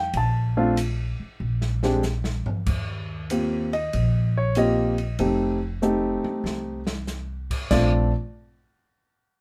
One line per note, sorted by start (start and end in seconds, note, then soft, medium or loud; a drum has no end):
0.00 0.14 G5 medium
0.14 1.16 A#1 medium
0.14 0.75 A5 medium
0.14 ride medium
0.57 0.75 A3 medium
0.57 0.75 C4 medium
0.57 0.75 D4 medium
0.57 0.75 F4 medium
0.77 hi-hat pedal medium
0.77 ride medium
1.20 muted upright bass stroke soft
1.40 2.42 A#1 medium
1.61 snare soft
1.83 2.02 G#3 medium
1.83 2.01 C4 medium
1.83 2.02 D4 medium
1.83 2.02 G4 medium
1.83 snare medium
2.03 snare medium
2.03 hi-hat pedal medium
2.24 snare medium
2.46 muted upright bass stroke soft
2.46 floor tom medium
2.66 3.89 D#2 medium
2.66 kick medium
2.66 crash medium
3.30 3.69 A#3 soft
3.30 3.69 C4 soft
3.30 3.69 F4 soft
3.30 3.69 G4 medium
3.30 hi-hat pedal medium
3.30 ride medium
3.73 4.32 D#5 medium
3.73 ride soft
3.93 5.15 A#1 medium
3.93 ride medium
4.37 4.56 C#5 medium
4.55 4.95 A#3 medium
4.55 4.95 C4 soft
4.55 4.95 F4 medium
4.55 4.95 G4 medium
4.55 5.16 D#5 medium
4.55 hi-hat pedal soft
4.55 ride medium
4.98 ride soft
5.19 6.21 F1 medium
5.19 5.58 A3 medium
5.19 5.58 C4 soft
5.19 5.58 D#4 medium
5.19 5.58 G4 medium
5.19 ride medium
5.82 6.80 A3 medium
5.82 6.79 C4 medium
5.82 6.80 D#4 medium
5.82 6.80 G4 medium
5.82 hi-hat pedal medium
5.82 high tom soft
6.24 muted upright bass stroke soft
6.24 high tom medium
6.44 7.67 C2 medium
6.44 snare medium
6.87 snare medium
7.07 snare soft
7.07 hi-hat pedal medium
7.50 kick medium
7.50 crash medium
7.71 8.11 A#1 medium
7.71 8.10 A3 medium
7.71 8.10 C4 soft
7.71 8.10 D4 medium
7.71 8.10 F4 medium
7.71 8.11 D5 medium
7.71 kick medium
7.71 snare medium
7.71 crash medium